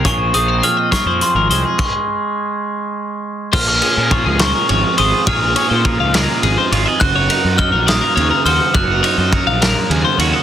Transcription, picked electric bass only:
\new Staff \with { instrumentName = "Picked electric bass" } { \clef bass \time 6/8 \key bes \minor \tempo 4. = 69 bes,,8 bes,,8 r8. f,16 r16 aes,,16 c,16 r16 | r2. | bes,,8 r16 bes,8 des,8 r16 aes,,16 r16 aes,,16 r16 | bes,,8 r16 bes,8 des,8 r16 aes,,16 r16 aes,,16 r16 |
ges,,8 r16 ges,8 bes,,8 r16 ees,16 r16 ees,16 r16 | ges,,8 r16 ges,8 bes,,8 r16 ees,16 r16 ees,16 r16 | }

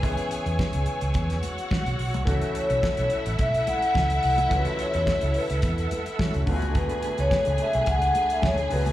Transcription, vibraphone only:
\new Staff \with { instrumentName = "Vibraphone" } { \time 4/4 \key fis \minor \tempo 4 = 107 b'2~ b'8 r4. | r8 cis''4 r8 e''8 fis''4 fis''8 | b'8 cis''8 cis''8 b'4 r4. | b'8. cis''8. e''8 fis''8. e''16 cis''8 b'8 | }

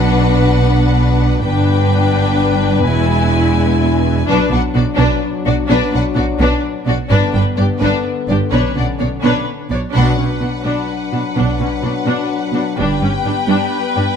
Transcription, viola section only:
\new Staff \with { instrumentName = "Viola section" } { \time 3/4 \key b \minor \tempo 4 = 127 d'2. | d'2. | e'2. | d'8 d'8 d'8 d'8 r8 d'8 |
d'8 d'8 d'8 d'8 r8 d'8 | d'8 d'8 d'8 d'8 r8 d'8 | d'8 d'8 d'8 d'8 r8 d'8 | d'8 cis'8 d'8 d'8 r8 d'8 |
d'8 cis'8 d'8 d'8 r8 d'8 | d'8 cis'8 d'8 d'8 r8 d'8 | }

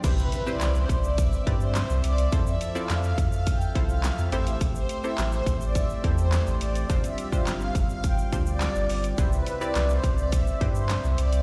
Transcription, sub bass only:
\new Staff \with { instrumentName = "Sub bass" } { \clef bass \time 4/4 \key c \major \tempo 4 = 105 c,8 r8 c,8 c,4 g,8. c,16 c,8 | f,8 r8 f,8 f,4 c,8. f,16 a,,8 | a,,8 r8 a,,8 a,,4 e,8. a,,16 a,,8 | g,,8 r8 g,,8 g,,4 d,8. g,,16 g,,8 |
c,8 r8 c,8 c,4 g,8. c,16 c,8 | }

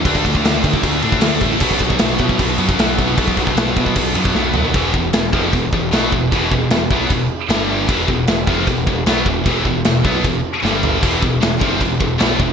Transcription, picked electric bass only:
\new Staff \with { instrumentName = "Picked electric bass" } { \clef bass \time 4/4 \key e \minor \tempo 4 = 153 d,8 d,8 d,8 d8 d,8 a,8 d,8 a,,8 | b,,8 b,,8 b,,8 b,8 b,,8 fis,8 b,,8 b,,8 | b,,8 b,,8 b,,8 b,8 b,,8 fis,8 b,,8 dis,8 | e,,8 e,,8 e,,8 f,,8 e,,8 e,,8 b,,8 e,,8 |
e,,8 e,,8 e,,8 b,,8 e,,8 r8 g,,4 | e,,8 e,,8 e,,8 f,,8 e,,8 e,,8 b,,8 e,,8 | e,,8 e,,8 e,,8 b,,8 e,,8 r8 g,,4 | e,,8 e,,8 e,,8 f,,8 e,,8 e,,8 b,,8 e,,8 | }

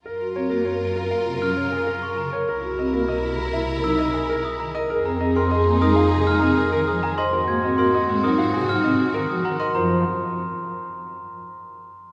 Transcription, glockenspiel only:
\new Staff \with { instrumentName = "Glockenspiel" } { \time 4/4 \key ges \lydian \tempo 4 = 99 r2 r16 f'''16 r8. des'''16 bes''16 r16 | r2 r16 e'''16 r8. dis'''16 bes''16 r16 | r16 bes''16 r16 c'''16 r8 ees'''16 r8 f'''16 r8. ees'''16 bes''16 c'''16 | r16 aes'''16 r16 c'''16 r8 ees'''16 r8 f'''16 r8. ees'''16 bes''16 c'''16 |
bes''8 r2. r8 | }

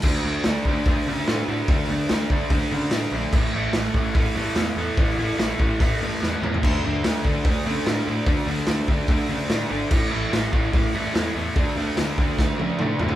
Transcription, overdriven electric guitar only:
\new Staff \with { instrumentName = "Overdriven electric guitar" } { \time 4/4 \key a \phrygian \tempo 4 = 146 <d a d'>8 <d a d'>8 <d a d'>8 <d a d'>8 <d a d'>8 <d a d'>8 <d a d'>8 <d a d'>8 | <d a d'>8 <d a d'>8 <d a d'>8 <d a d'>8 <d a d'>8 <d a d'>8 <d a d'>8 <d a d'>8 | <a, e a>8 <a, e a>8 <a, e a>8 <a, e a>8 <a, e a>8 <a, e a>8 <a, e a>8 <a, e a>8 | <a, e a>8 <a, e a>8 <a, e a>8 <a, e a>8 <a, e a>8 <a, e a>8 <a, e a>8 <a, e a>8 |
<d a d'>8 <d a d'>8 <d a d'>8 <d a d'>8 <d a d'>8 <d a d'>8 <d a d'>8 <d a d'>8 | <d a d'>8 <d a d'>8 <d a d'>8 <d a d'>8 <d a d'>8 <d a d'>8 <d a d'>8 <d a d'>8 | <a, e a>8 <a, e a>8 <a, e a>8 <a, e a>8 <a, e a>8 <a, e a>8 <a, e a>8 <a, e a>8 | <d a d'>8 <d a d'>8 <d a d'>8 <d a d'>8 <d a d'>8 <d a d'>8 <d a d'>8 <d a d'>8 | }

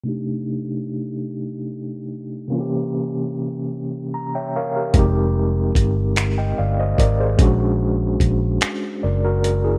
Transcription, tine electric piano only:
\new Staff \with { instrumentName = "Tine electric piano" } { \time 6/8 \key f \mixolydian \tempo 4. = 49 << { r2. | r2 bes''16 <des'' e'' g''>16 <bes' des'' f''>16 <g' bes'>16~ | <g' bes'>16 r4. <ees'' g''>16 <d'' f''>16 <c'' ees''>16 <bes' d''>16 <aes' c''>16~ | <aes' c''>16 r4. r16 <bes' d''>16 <fis' bes'>8 <e' aes'>16 | } \\ { <c a d' ees' g'>2. | <c e bes des' f' g'>2. | <aes c' ees' g'>2. | <aes cis' d' fis'>2. | } >> }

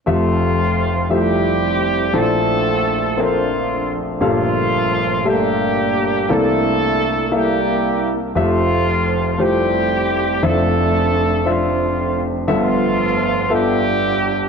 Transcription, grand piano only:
<<
  \new Staff \with { instrumentName = "Grand piano" } { \time 6/8 \key f \major \tempo 4. = 58 <a f' g' e''>4 r8 <f a g' e''>4 r8 | <c' e' a' d''>4 r8 <c' a' bes' c'' e''>4 r8 | <bes, g' a' f''>4 r8 <a bes g' a' e''>4 r8 | <bes e' a' d''>4 r8 <bes e' a' e''>4 r8 |
<a f' g' e''>4 r8 <f a g' c''>4 r8 | <d' e' f' c'' e''>4 r8 <d' f' c'' e''>4 r8 | <b f' a' e''>4 r8 <b f' a' e''>4 r8 | }
  \new Staff \with { instrumentName = "Grand piano" } { \clef bass \time 6/8 \key f \major <f,, f,>2. | <bes,, bes,>2. | <g,, g,>2. | <c, c>2. |
<f,, f,>2. | <f,, f,>2. | <g,, g,>2. | }
>>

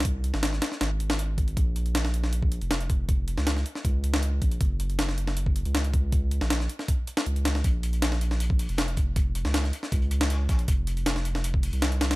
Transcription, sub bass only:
\new Staff \with { instrumentName = "Sub bass" } { \clef bass \time 4/4 \key bes \minor \tempo 4 = 158 c,8. aes,,8. r8 aes,,8 aes,,4. | bes,,2~ bes,,8. f,,4~ f,,16~ | f,,8. des,8. r8 des,4. bes,,8 | ges,,2~ ges,,8. des,4~ des,16~ |
des,8. bes,,8. r4. des,4 | bes,,2~ bes,,8. f,,4~ f,,16~ | f,,8. des,8. r8 des,4. bes,,8 | f,,2~ f,,8. c,4~ c,16 | }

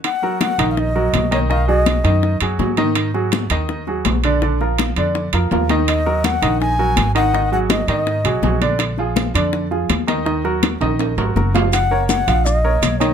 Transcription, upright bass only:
\new Staff \with { instrumentName = "Upright bass" } { \clef bass \time 4/4 \key ees \minor \tempo 4 = 164 r4. bes,,4. ces,4~ | ces,4. fis,4 fis,8 gis,4~ | gis,4. ees,4. bes,,4~ | bes,,4. f,4 f,8 ees,4~ |
ees,4. bes,,4. aes,,4~ | aes,,4. aes,4 ces,8 bes,,4~ | bes,,4. f,4. ees,4~ | ees,4. bes,,4 aes,,8 ges,,4~ |
ges,,4. bes,,4. ces,4 | }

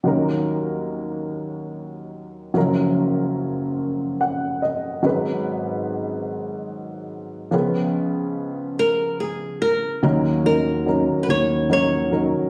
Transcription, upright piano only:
<<
  \new Staff \with { instrumentName = "Upright piano" } { \time 6/8 \key ees \minor \tempo 4. = 48 << { r2. | r2 ges''8 ees''8 | r2. | r2. |
r2. | } \\ { <ges des' ees' bes'>2. | <f ges des' bes'>2. | <ges ees' aes' ces''>2. | <f ces' des' aes'>2. |
<ges des' ees' bes'>8 <ges des' ees' bes'>8 <ges des' ees' bes'>4 <ges des' ees' bes'>8 <ges des' ees' bes'>8 | } >> }
  \new Staff \with { instrumentName = "Upright piano" } { \clef bass \time 6/8 \key ees \minor <ees, ees>2. | <ges,, ges,>2. | <aes,, aes,>2. | <des, des>2. |
<ees, ees>2. | }
>>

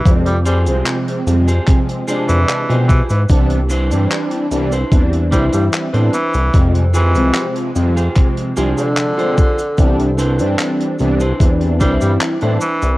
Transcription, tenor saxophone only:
\new Staff \with { instrumentName = "Tenor saxophone" } { \clef bass \time 4/4 \key c \major \tempo 4 = 74 r16 g16 g16 r2 e8 r16 e16 e16 | r2 r8 g16 g16 r8 e8 | r8 e8 r4. r16 d4~ d16 | r2 r8 g16 g16 r8 e8 | }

